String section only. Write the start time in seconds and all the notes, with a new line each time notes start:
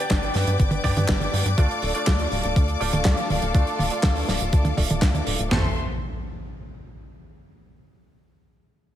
Already playing: B4 D5 G5 D6
1.58 A4 F5
5.51 A4 C5 E5 C6